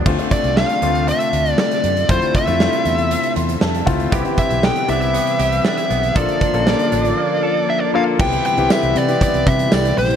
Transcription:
<<
  \new Staff \with { instrumentName = "Lead electric guitar" } { \time 4/4 \key c \major \tempo 4 = 118 r8 d''8 f''4 e''4 d''4 | c''8 e''2 r4. | r8 e''8 g''8 e''4. e''4 | d''2. e''8 f''8 |
g''8 g''8 e''8 d''8 d''8 e''8 d''8 c''8 | }
  \new Staff \with { instrumentName = "Clean electric guitar" } { \time 4/4 \key c \major r1 | r1 | <e g'>8 e'8 b8 d'16 e'16 b8 g'8 d'16 e'16 b8 | <f a'>8 d'8 bes8 d'8 bes8 a'8 d'8 bes8 |
r1 | }
  \new Staff \with { instrumentName = "Grand piano" } { \time 4/4 \key c \major << { r1 | r2 r8 c'''8 a''8 f''8 | r1 | r1 |
r1 | } \\ { <a c' d' f'>16 <a c' d' f'>4 r16 <a c' d' f'>4. r4 | <a c' e' f'>8 r16 <a c' e' f'>4. r4 r16 <a c' e' f'>16 r16 | <b c' e' g'>16 <b c' e' g'>4 r16 <c b e' g'>4. r4 | <bes d' f' a'>8 r16 <bes des' d' f' a'>4. r4 r16 <bes d' f' a'>16 r16 |
<b c' e' g'>8 r16 <b c' e' g'>8. r16 <b c' e' g'>4. r8. | } >> }
  \new Staff \with { instrumentName = "String machine" } { \clef bass \time 4/4 \key c \major << { d'1 | e''1 | b'1 | bes1 |
b'1 | } \\ { <c d a a'>1~ | <c d a a'>1 | <c e g>1 | <d f f' a'>1 |
<c e g e'>1 | } >> }
  \new Staff \with { instrumentName = "Fretless electric bass" } { \clef bass \time 4/4 \key c \major d,16 r8 c,8 r16 d,8. r16 d,8 r8 fis,8 | f,16 r8 f,8 r16 e,8. r16 e,8 f,8 des,8 | c,16 r8 b,,8 r16 c,8. r16 c,8 r8 b,,8 | bes,,16 r8 bes,,8 r16 a,,8 r2 |
c,8 r16 c,16 r16 c,16 c8 r16 c,16 c8 c,8 bes,,8 | }
  \new DrumStaff \with { instrumentName = "Drums" } \drummode { \time 4/4 <cymc bd>16 hh16 <hh bd>16 hh16 sn16 hh16 hh16 hh16 hh16 hh16 hh16 hh16 sn16 hh16 hh16 hh16 | <hh bd>16 hh16 <hh bd>16 hh16 sn16 hh16 hh16 hh16 hh16 hh16 hh16 hh16 sn16 hh16 <hh bd>16 hh16 | <hh bd>16 hh16 <hh bd>16 hh16 sn16 hh16 hh16 hh16 hh16 hh16 hh16 hh16 sn16 hh16 hh16 hh16 | <hh bd>16 hh16 <hh bd>16 hh16 sn16 hh16 hh16 hh16 r4 r4 |
<cymc bd>16 hh16 hh16 hh16 <sn tamb>16 hh16 hh16 hh16 <hh bd>16 hh16 <hh bd>16 hh16 <sn tamb>16 hh16 hho16 hh16 | }
>>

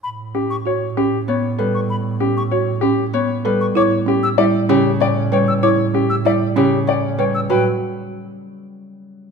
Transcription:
<<
  \new Staff \with { instrumentName = "Flute" } { \time 6/4 \key a \mixolydian \tempo 4 = 193 b''8 r4 cis'''8 r2. r8 cis'''8 | b''8 r4 cis'''8 r2. r8 cis'''8 | d'''8 r4 e'''8 e''8 r4. g''8 r8 g''8 e'''8 | d'''8 r4 e'''8 e''8 r4. g''8 r8 g''8 e'''8 |
g''8 r1 r4. | }
  \new Staff \with { instrumentName = "Grand piano" } { \time 6/4 \key a \mixolydian r4 g'8 r8 cis''8 r8 g'8 r8 cis''8 r8 b'8 r8 | r4 g'8 r8 cis''8 r8 g'8 r8 cis''8 r8 b'8 r8 | cis''8 r8 g'8 r8 d''8 r8 g'8 r8 d''8 r8 cis''8 r8 | cis''8 r8 g'8 r8 d''8 r8 g'8 r8 d''8 r8 cis''8 r8 |
b'8 r1 r4. | }
  \new Staff \with { instrumentName = "Marimba" } { \time 6/4 \key a \mixolydian r4 cis'8 r8 fis'8 r8 cis'8 r4. a'8 r8 | r4 cis'8 r8 fis'8 r8 cis'8 r4. a'8 r8 | e'8 r8 cis'8 r8 e'8 r8 cis'8 r4. b'8 r8 | e'8 r8 cis'8 r8 e'8 r8 cis'8 r4. b'8 r8 |
fis'8 r1 r4. | }
  \new Staff \with { instrumentName = "Harp" } { \clef bass \time 6/4 \key a \mixolydian << { r1 b4 g4~ | g1 b4 g4~ | g2 g4 cis4 cis'4 g4~ | g2 g4 cis4 cis'4 g4~ |
g1. | } \\ { r1. | r1. | r1. | r1. |
fis8 r1 r4. | } >> }
  \new Staff \with { instrumentName = "Double bass" } { \clef bass \time 6/4 \key a \mixolydian a,1.~ | a,1. | a,1.~ | a,1. |
a,8 r1 r4. | }
>>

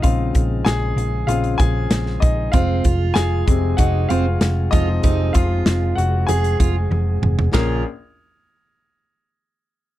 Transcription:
<<
  \new Staff \with { instrumentName = "Grand piano" } { \time 4/4 \key bes \minor \tempo 4 = 96 <f' f''>4 <aes' aes''>4 <f' f''>8 <aes' aes''>4 <ees' ees''>8 | <f' f''>4 <aes' aes''>4 <ges' ges''>8 <f' f''>4 <ees' ees''>8~ | <ees' ees''>8 <f' f''>4 <ges' ges''>8 <aes' aes''>4 r4 | <des' aes' bes'>8 r2. r8 | }
  \new Staff \with { instrumentName = "Grand piano" } { \clef bass \time 4/4 \key bes \minor <des aes c'>8 r4. <des aes c'>8 r4. | r4. <c aes c'>4. r8 <f aes c'>8 | <c aes c'>1 | bes,,8 r2. r8 | }
  \new Staff \with { instrumentName = "Steel-string acoustic guitar" } { \time 4/4 \key bes \minor r1 | c'8 f'4 r8 ees'8 c'16 r8. f'16 r16 | ees'8 f'4 r8 aes'8 f'16 r4 r16 | f'8 r2. r8 | }
  \new Staff \with { instrumentName = "Tonewheel organ" } { \clef bass \time 4/4 \key bes \minor << { <bes, des>1 | <c aes'>1~ | <c aes'>1 | <des bes aes'>8 r2. r8 | } \\ { aes1~ | aes1~ | aes1 | r1 | } >> }
  \new Staff \with { instrumentName = "Picked electric bass" } { \clef bass \time 4/4 \key bes \minor bes,,8 bes,,8 bes,,8 bes,,8 bes,,8 bes,,8 bes,,8 bes,,8 | f,,8 f,,8 f,,8 f,,8 f,,8 f,,8 f,,8 f,,8 | f,,8 f,,8 f,,8 f,,8 f,,8 f,,8 f,,8 f,,8 | bes,,8 r2. r8 | }
  \new DrumStaff \with { instrumentName = "Drums" } \drummode { \time 4/4 <hh bd>8 <hh bd>8 <hh sn>8 hh8 hh16 hh16 <hh bd>8 <hh sn>16 sn16 <hh bd>8 | <hh bd>8 <hh bd>8 <hh sn>8 <hh bd>8 <hh bd>8 hh8 <hh sn>8 <hh bd>8 | <hh bd>8 <hh bd>8 <hh sn>8 hh8 hh16 hh16 <hh bd>8 tommh8 toml16 tomfh16 | <bd rb sn>4 r4 r4 r4 | }
>>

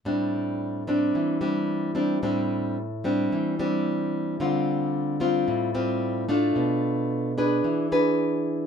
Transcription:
\new Staff \with { instrumentName = "Nylon-string guitar" } { \time 4/4 \key a \minor \tempo 4 = 111 << { <g c' d'>4. <g c' d'>4 <g c' d'>4 <g c' d'>8 | <g c' d'>4 r8 <g c' d'>4 <g c' d'>4. | <g c' f'>4. <g c' f'>4 <g c' f'>4 <a d' f'>8~ | <a d' f'>4. <d' gis' b'>4 <d' gis' b'>4. | } \\ { a,2 e2 | a,2 e2 | d2 a,2 | b,2 e2 | } >> }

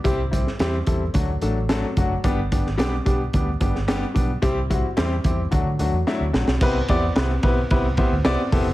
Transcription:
<<
  \new Staff \with { instrumentName = "Grand piano" } { \time 4/4 \key c \lydian \tempo 4 = 110 <g c' e' g'>16 r16 <g c' e' g'>16 r16 <g c' e' g'>16 r16 <g c' e' a'>16 r16 <fis a d' fis'>16 r16 <fis a d' a'>16 r16 <fis a d' a'>16 r16 <fis a d' fis'>16 r16 | <g b d' g'>16 r16 <g b d' g'>16 r16 <g b d' g'>16 r16 <g b d' g'>16 r16 <g b d' g'>16 r16 <g b d' g'>16 r16 <g b d' g'>16 r16 <g b d' g'>16 r16 | <g c' e' g'>16 r16 <g c' e' fis'>16 r16 <g c' e' g'>16 r16 <g c' e' g'>16 r16 <fis a d' fis'>16 r16 <fis a d' fis'>16 r16 <fis a d' e'>16 r16 <fis a d' fis'>16 r16 | <b c' e' g' b'>16 r16 <b c' e' g' d''>16 r16 <b c' e' g' b'>16 r16 <b c' e' g' b'>16 r16 <b c' e' g' b'>16 r16 <b c' e' g' c''>16 r16 <b c' e' g' d''>16 r16 <b c' e' g' a'>16 r16 | }
  \new Staff \with { instrumentName = "Fingered electric bass" } { \clef bass \time 4/4 \key c \lydian c,4 e,8 e,8 d,8 a,,4 fis,,8 | g,,4 b,,8 b,,8 d,8 g,,4 b,,8 | c,4 e,8 e,8 d,16 d16 d,16 e,16 r16 d,16 bes,,16 b,,16 | c,8 e,8 c,8 b,,8 c,8. d,16 c,16 r16 f,,16 fis,,16 | }
  \new DrumStaff \with { instrumentName = "Drums" } \drummode { \time 4/4 <hh bd>8 <hh bd>16 sn16 <hh sn>8 <hh bd>8 <hh bd>8 hh8 <hh sn>8 <hh bd>8 | <hh bd>8 <hh bd>16 sn16 <hh sn>8 <hh bd>8 <hh bd>8 <hh bd>16 sn16 <hh sn>8 <hh bd>8 | <hh bd>8 <hh bd>8 <hh sn>8 <hh bd>8 <hh bd>8 hh8 sn8 sn16 sn16 | <cymc bd>8 <bd cymr>8 <cymr sn>8 <bd cymr>8 <bd cymr>8 <bd cymr>8 <cymr sn>8 <hho bd cymr>8 | }
>>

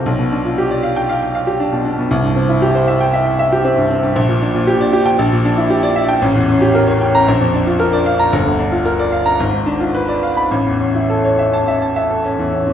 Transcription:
\new Staff \with { instrumentName = "Grand piano" } { \time 4/4 \key g \mixolydian \tempo 4 = 115 << { r4. r16 g''8 r4. r16 | r4. r16 g''8 r4. r16 | \key a \phrygian r4. r16 g''16 r4. r16 g''16 | r4. r16 bes''16 r4. r16 bes''16 |
r4. r16 bes''16 r4. r16 b''16 | r4. r16 a''8 r4. r16 | } \\ { b,,16 b,16 d'16 f'16 g'16 d''16 f''8 f''16 g''16 f''16 g'16 d'16 b,16 d'16 b,16 | c,16 g,16 c'16 e'16 g'16 c''16 e''8 e''16 g''16 e''16 g'16 c'16 g,16 c'16 g,16 | bes,,16 bes,16 d'16 bes,16 g'16 d''16 g'8 bes,,16 bes,16 d'16 e'16 g'16 d''16 e''8 | a,,16 e,16 cis'16 g'16 bes'16 cis''16 g''8 bes,,16 f,16 d'16 f'16 bes'16 d''16 f''8 |
g,,16 d,16 d'16 f'16 bes'16 d''16 f''8 gis,,16 gis,16 d'16 eis'16 b'16 d''16 eis''8 | a,,16 e,16 cis'16 e'16 a'16 cis''16 e''8 e''16 a''16 e''16 a'16 cis'16 e,16 cis'16 e,16 | } >> }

